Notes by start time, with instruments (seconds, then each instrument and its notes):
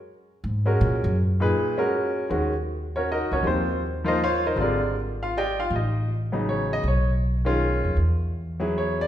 0.44 upright bass G#2
0.65 grand piano G#3 C#4 F#4 A#4
0.81 upright bass A#2
1.04 upright bass F#2
1.40 grand piano A#2 D#4 G#4 B4
1.77 grand piano G#3 C#4 F#4 A#4
2.29 upright bass D#2, grand piano D#3 G#3 C#4 F#4
2.96 grand piano C#4 F#4 A#4 C#5
3.12 grand piano D#4 F#4 A#4 D#5
3.31 upright bass C#2, grand piano C#4 F#4 A#4 C#5
3.43 upright bass D#2, grand piano F3 A#3 D#4 G4
3.47 grand piano C4 F4 C5
4.04 grand piano F3 A#3 D#4 F4 C5 D#5
4.08 grand piano D#4 A#4
4.24 grand piano F4 C5 C#5 F5
4.47 grand piano D#4 A#4 C5 D#5
4.56 upright bass G#1, grand piano D3 G3 C4 F4
4.61 grand piano D4 G#4 A#4 D5
5.23 grand piano F4 F5
5.37 grand piano G4 D5 D#5 G5
5.60 grand piano F4 F5
5.70 upright bass A1
5.76 grand piano D#4 D#5
6.32 grand piano C#3 F#3 B3 D#4
6.49 grand piano C#5
6.73 grand piano D#5
6.83 upright bass B1
6.88 grand piano C#5
7.45 grand piano D#3 G#3 C#4 F4
7.84 upright bass F2
7.97 upright bass E2
8.60 grand piano F#3 B3 E4 G#4
8.78 grand piano C#5
9.01 grand piano D5